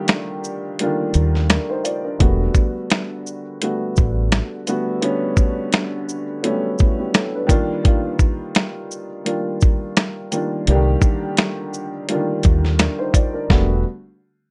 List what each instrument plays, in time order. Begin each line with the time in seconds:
Already playing: upright piano D3 D#3 G3 A#3 D4 F4 G4
0.08 snare, closed hi-hat
0.44 shaker
0.79 upright piano D3 G3 A#3 D4 F4, closed hi-hat
0.86 upright piano D#3
1.14 fingered electric bass D#2, closed hi-hat, shaker
1.35 snare
1.50 upright piano D4 A#4, snare, closed hi-hat
1.70 upright piano D#4 C5
1.84 upright piano F4 D5, closed hi-hat, shaker
2.04 upright piano D4 A#4
2.19 fingered electric bass E1, upright piano D3 G3 A3 B3 F#4, kick, closed hi-hat
2.54 kick, shaker
2.90 snare, closed hi-hat
3.27 shaker
3.62 upright piano D3 G3 A3 B3 F#4, closed hi-hat
3.96 fingered electric bass A1, kick, shaker
4.32 snare, closed hi-hat
4.67 upright piano D3 G3 A3 B3 F#4, closed hi-hat, shaker
5.01 upright piano D3 G3 A3 B3 C#4, closed hi-hat
5.37 kick, shaker
5.73 snare, closed hi-hat
6.09 shaker
6.43 upright piano D3 F#3 A3 B3 C#4, closed hi-hat
6.50 upright piano G3
6.79 upright piano G3 E4, kick, shaker
6.99 upright piano B3 G4
7.14 upright piano C#4 A4, snare, closed hi-hat
7.35 upright piano D4 B4
7.47 upright piano D#3 G3 A#3 D4 F4, kick, closed hi-hat, shaker
7.84 upright piano D#3 G3 A#3 D4 F4, kick, closed hi-hat
8.19 kick, shaker
8.55 snare, closed hi-hat
8.91 shaker
9.24 upright piano D#3 G3 A#3 D4 F4, closed hi-hat
9.61 kick, shaker
9.97 snare, closed hi-hat
10.31 upright piano D#3 G3 A#3 D4 F4, closed hi-hat, shaker
10.67 fingered electric bass C2, upright piano D3 G3 A#3 D4 G4, closed hi-hat
10.75 upright piano D#3
11.02 kick, shaker
11.37 snare, closed hi-hat
11.74 shaker
12.08 upright piano D3 G3 A#3 D4 F4, closed hi-hat
12.15 upright piano D#3
12.43 fingered electric bass D#2, kick, closed hi-hat, shaker
12.65 snare
12.79 upright piano D4 A#4, snare, closed hi-hat
12.99 upright piano D#4 C5
13.13 upright piano F4 D5, kick, closed hi-hat, shaker
13.33 upright piano D4 A#4
13.50 fingered electric bass E1, upright piano D3 G3 A3 B3 F#4, kick, snare